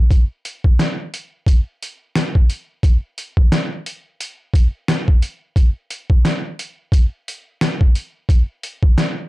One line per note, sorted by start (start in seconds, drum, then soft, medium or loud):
0.11 kick loud
0.11 closed hi-hat medium
0.45 closed hi-hat medium
0.64 kick medium
0.79 snare loud
0.79 closed hi-hat medium
1.14 closed hi-hat medium
1.46 kick medium
1.46 closed hi-hat medium
1.83 closed hi-hat medium
2.16 snare loud
2.16 closed hi-hat medium
2.35 kick medium
2.50 closed hi-hat medium
2.83 kick loud
2.83 closed hi-hat medium
3.18 closed hi-hat medium
3.37 kick medium
3.52 snare loud
3.52 closed hi-hat medium
3.86 closed hi-hat medium
4.21 closed hi-hat medium
4.54 kick medium
4.54 closed hi-hat medium
4.88 snare loud
4.88 closed hi-hat medium
5.08 kick medium
5.22 closed hi-hat medium
5.56 kick loud
5.56 closed hi-hat medium
5.90 closed hi-hat medium
6.10 kick medium
6.25 snare loud
6.25 closed hi-hat medium
6.59 closed hi-hat medium
6.92 kick medium
6.92 closed hi-hat medium
7.28 closed hi-hat medium
7.61 snare loud
7.61 closed hi-hat medium
7.81 kick medium
7.95 closed hi-hat medium
8.29 kick loud
8.29 closed hi-hat medium
8.63 closed hi-hat medium
8.83 kick medium
8.98 snare loud
8.98 closed hi-hat medium